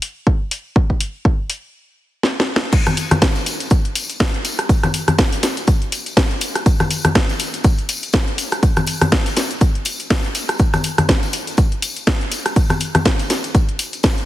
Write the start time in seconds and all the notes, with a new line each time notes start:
0.02 open hi-hat
0.27 kick
0.51 open hi-hat
0.76 kick
0.90 kick
1.00 open hi-hat
1.25 kick
1.50 open hi-hat
2.23 snare
2.40 snare
2.56 snare
2.73 kick, closed hi-hat, crash, tambourine
2.86 cross-stick, closed hi-hat, tambourine, high conga
2.97 open hi-hat, tambourine
3.11 cross-stick, closed hi-hat, tambourine, high conga
3.22 kick, snare, closed hi-hat, tambourine
3.36 closed hi-hat, tambourine
3.46 open hi-hat, tambourine
3.60 closed hi-hat, tambourine
3.70 kick, closed hi-hat, tambourine
3.85 closed hi-hat
3.95 open hi-hat, tambourine
4.10 closed hi-hat, tambourine
4.20 kick, snare, closed hi-hat
4.34 closed hi-hat
4.45 open hi-hat, tambourine
4.58 cross-stick, closed hi-hat, tambourine
4.69 kick, closed hi-hat, tambourine
4.83 cross-stick, closed hi-hat, tambourine, high conga
4.94 open hi-hat, tambourine
5.08 cross-stick, closed hi-hat, tambourine, high conga
5.18 kick, snare, closed hi-hat, tambourine
5.32 open hi-hat, tambourine
5.43 snare, open hi-hat, tambourine
5.57 closed hi-hat, tambourine
5.67 kick, closed hi-hat, tambourine
5.82 closed hi-hat
5.92 open hi-hat, tambourine
6.06 closed hi-hat, tambourine
6.17 kick, snare, closed hi-hat, tambourine
6.31 closed hi-hat
6.41 open hi-hat, tambourine
6.55 cross-stick, closed hi-hat, tambourine
6.66 kick, closed hi-hat, tambourine
6.80 cross-stick, closed hi-hat, tambourine, high conga
6.91 open hi-hat, tambourine
7.05 cross-stick, closed hi-hat, tambourine, high conga
7.15 kick, snare, closed hi-hat, tambourine
7.29 closed hi-hat, tambourine
7.39 open hi-hat, tambourine
7.54 closed hi-hat, tambourine
7.64 kick, closed hi-hat, tambourine
7.78 closed hi-hat
7.89 open hi-hat, tambourine
8.03 closed hi-hat, tambourine
8.13 kick, snare, closed hi-hat, tambourine
8.28 closed hi-hat
8.38 open hi-hat, tambourine
8.52 cross-stick, closed hi-hat, tambourine
8.63 kick, closed hi-hat, tambourine
8.77 cross-stick, closed hi-hat, tambourine, high conga
8.86 open hi-hat, tambourine
9.01 cross-stick, closed hi-hat, tambourine, high conga
9.12 kick, snare, closed hi-hat, tambourine
9.26 open hi-hat, tambourine
9.37 snare, open hi-hat, tambourine
9.51 closed hi-hat, tambourine
9.61 kick, closed hi-hat, tambourine
9.75 closed hi-hat
9.85 open hi-hat, tambourine
10.00 closed hi-hat, tambourine
10.10 kick, snare, closed hi-hat, tambourine
10.24 closed hi-hat
10.35 open hi-hat, tambourine
10.49 cross-stick, closed hi-hat, tambourine
10.59 kick, closed hi-hat, tambourine
10.73 cross-stick, closed hi-hat, tambourine, high conga
10.84 open hi-hat, tambourine
10.98 cross-stick, closed hi-hat, tambourine, high conga
11.09 kick, snare, closed hi-hat, tambourine
11.23 closed hi-hat, tambourine
11.33 open hi-hat, tambourine
11.47 closed hi-hat, tambourine
11.57 kick, closed hi-hat, tambourine
11.72 closed hi-hat
11.82 open hi-hat, tambourine
11.96 closed hi-hat, tambourine
12.07 kick, snare, closed hi-hat
12.21 closed hi-hat
12.31 open hi-hat, tambourine
12.45 cross-stick, closed hi-hat, tambourine
12.56 kick, closed hi-hat, tambourine
12.70 cross-stick, closed hi-hat, tambourine, high conga
12.80 open hi-hat, tambourine
12.95 cross-stick, closed hi-hat, tambourine, high conga
13.05 kick, snare, closed hi-hat, tambourine
13.19 open hi-hat, tambourine
13.30 snare, open hi-hat, tambourine
13.44 closed hi-hat, tambourine
13.55 kick, closed hi-hat, tambourine
13.69 closed hi-hat
13.79 open hi-hat, tambourine
13.93 closed hi-hat, tambourine
14.03 kick, snare, closed hi-hat, tambourine
14.18 closed hi-hat